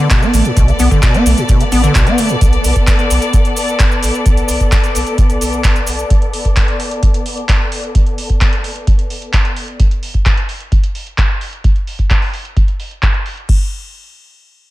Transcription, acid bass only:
0.10 0.24 B2 medium
0.22 0.35 B3 medium
0.34 0.47 A3 medium
0.45 0.51 A2 medium
0.57 0.70 B2 medium
0.68 0.72 D3 loud
0.80 0.89 B3 medium
0.91 1.01 D3 loud
1.03 1.16 B2 medium
1.14 1.27 B3 medium
1.26 1.39 A3 medium
1.38 1.44 A2 medium
1.49 1.62 B2 medium
1.61 1.64 D3 loud
1.72 1.82 B3 medium
1.84 1.93 D3 loud
1.95 2.08 B2 medium
2.07 2.20 B3 medium
2.18 2.31 A3 medium
2.30 2.36 A2 medium

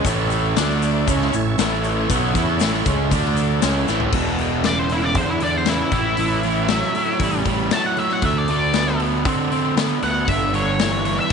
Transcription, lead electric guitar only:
4.65 4.79 D5 medium
4.79 4.91 C5 medium
4.92 5.04 E4 medium
5.04 5.17 D5 medium
5.17 5.29 C5 medium
5.30 5.42 E4 medium
5.43 5.55 D5 medium
5.57 5.68 C5 medium
5.68 5.92 E4 medium
5.93 7.43 E4 medium
7.73 7.86 A5 loud
7.86 7.98 F#5 medium
7.99 8.11 E5 medium
8.13 8.25 F#5 medium
8.25 8.38 E5 medium
8.38 8.49 D5 medium
8.51 9.00 D5 medium
10.03 10.28 F#5 medium
10.28 10.53 E5 medium
10.55 11.04 C#5 medium
11.05 11.18 C#5 medium
11.18 11.31 E5 medium

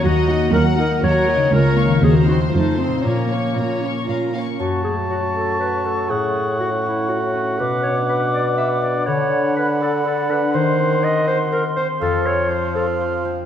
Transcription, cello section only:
0.04 0.46 D#2 medium
0.54 0.96 D#2 medium
1.03 1.45 D#2 medium
1.53 1.95 C#2 medium
2.04 2.46 D#2 medium
2.54 2.97 F2 soft
3.05 3.49 A#2 soft
3.58 4.01 A#2 soft
4.09 4.52 A#2 soft

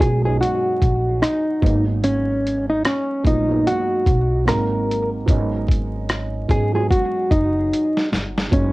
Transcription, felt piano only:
0.00 0.23 F#3 medium
0.00 0.24 G#3 medium
0.00 0.25 B3 medium
0.00 0.26 C#4 medium
0.00 0.27 D#4 medium
0.00 0.18 F#4 medium
0.23 1.28 F#3 medium
0.23 1.28 G#3 medium
0.23 1.29 B3 medium
0.23 1.29 C#4 medium
0.23 1.29 D#4 medium
1.62 2.94 F#3 medium
1.62 2.94 G#3 medium
1.62 2.95 A#3 medium
1.62 2.95 B3 medium
1.62 2.95 D#4 medium
3.24 3.41 F#3 medium
3.24 3.41 G#3 medium
3.24 3.42 A#3 medium
3.24 3.42 B3 medium
3.24 3.42 F4 medium
3.48 4.44 F#3 medium
3.48 4.44 G#3 medium
3.48 4.45 A#3 medium
3.48 4.47 B3 medium
3.48 4.47 D#4 medium
4.45 5.15 F#3 medium
4.45 5.15 G#3 medium
4.45 5.15 A#3 medium
4.45 5.16 C4 medium
4.45 5.16 D#4 medium
5.26 6.07 F#3 medium
5.26 6.08 G#3 medium
5.26 6.08 B3 medium
5.26 6.08 C#4 medium
5.26 6.09 D#4 medium
6.48 6.65 F#3 medium
6.48 6.66 G#3 medium
6.48 6.66 B3 medium
6.48 6.66 C#4 medium
6.48 6.67 D#4 medium
6.73 7.77 F#3 medium
6.73 7.77 G#3 medium
6.73 7.78 B3 medium
6.73 7.78 C#4 medium
6.73 7.78 F#4 medium
8.51 8.73 F#3 medium
8.51 8.73 G#3 medium
8.51 8.73 A#3 medium
8.51 8.73 C#4 medium
8.51 8.73 D#4 medium

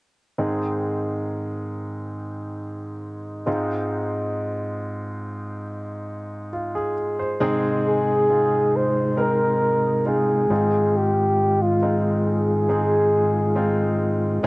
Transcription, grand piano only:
0.38 3.43 G#2 soft
0.38 3.43 D#3 soft
0.38 3.43 G#3 soft
0.38 3.43 C4 soft
0.38 3.43 D#4 soft
0.38 3.43 G#4 soft
3.46 6.93 G#2 soft
3.46 6.92 G#3 soft
3.46 6.93 C4 soft
3.46 6.93 D#4 soft
3.46 6.49 F4 soft
6.53 6.74 F4 soft
6.75 7.17 G#4 soft
7.19 7.61 C5 soft
7.40 10.46 G#2 medium
7.40 10.46 D#3 medium
7.40 8.25 G#3 medium
7.40 8.25 C4 medium
7.40 8.26 D#4 medium
7.40 8.26 G#4 medium
8.29 9.13 G#3 soft
8.29 9.13 C4 soft
8.29 9.13 D#4 soft
8.29 9.14 F4 medium
9.16 10.01 G#3 soft
9.16 10.01 C4 soft
9.16 10.01 D#4 soft
9.16 10.02 A#4 medium
10.06 10.48 G#3 soft
10.06 10.49 C4 soft
10.06 10.49 D#4 soft
10.06 10.49 F4 soft
10.50 13.96 G#2 soft
10.50 11.75 G#3 medium
10.50 11.76 C4 medium
10.50 11.76 D#4 soft
10.50 11.76 F4 medium
11.82 12.65 G#3 medium
11.82 12.66 C4 soft
11.82 12.66 D#4 soft
11.82 12.65 F4 medium
12.68 13.52 G#3 medium
12.68 13.52 C4 soft
12.68 13.52 D#4 medium
12.68 13.52 G#4 medium
13.55 14.39 G#3 medium
13.55 14.39 C4 medium
13.55 14.39 D#4 medium
13.55 14.39 F4 medium
14.43 14.47 G#3 medium

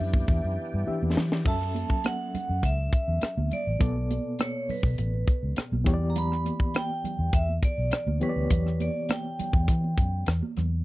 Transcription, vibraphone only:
0.00 0.85 E5 medium
1.48 2.02 A5 loud
2.06 2.66 F#5 medium
2.65 3.55 E5 medium
3.53 4.43 D5 medium
4.41 4.71 C#5 medium
4.70 5.54 B4 medium
6.10 6.16 A#5 medium
6.18 6.77 B5 loud
6.76 7.36 G5 medium
7.35 7.48 E5 medium
7.65 8.18 D5 medium
8.23 8.83 B4 medium
8.82 9.11 D5 medium
9.11 10.24 G5 medium

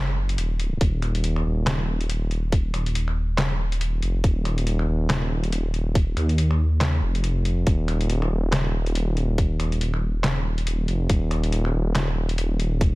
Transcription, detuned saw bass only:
0.00 0.37 F#1 loud
0.38 0.80 D#1 loud
0.81 1.44 D#1 loud
1.45 2.72 D#1 loud
2.74 4.01 D#1 loud
4.02 4.22 F1 loud
4.24 4.87 D#1 loud
4.88 6.15 D#1 loud
6.17 7.01 D#2 loud
7.02 7.65 F1 loud
7.67 8.30 D#1 loud
8.31 9.58 D#1 loud
9.60 10.87 D#1 loud
10.88 11.08 F1 loud
11.10 11.73 D#1 loud
11.74 12.95 D#1 loud

